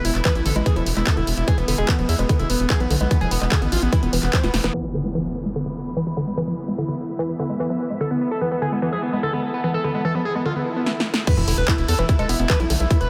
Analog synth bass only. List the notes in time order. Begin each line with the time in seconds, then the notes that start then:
0.05 E1
0.15 E1
0.35 A1
0.46 A1
0.56 A1
0.76 E1
0.86 E1
0.97 E1
1.17 E1
1.27 E1
1.37 E1
1.58 E1
1.68 E1
1.78 E1
1.99 E1
2.09 E2
2.19 E1
2.40 E1
2.50 E1
2.60 E1
2.80 B1
2.90 B1
3.01 B1
3.21 E1
3.31 E1
3.42 E1
3.62 A1
3.72 A1
3.82 A1
4.03 E1
4.13 E1
4.23 E1
4.44 E1
4.54 E1
4.64 E1
11.37 E1
11.48 E1
11.58 E1
11.78 E1
11.88 E2
11.99 E1
12.19 E1
12.29 E1
12.40 E1
12.60 B1
12.70 B1
12.80 B1
13.01 E1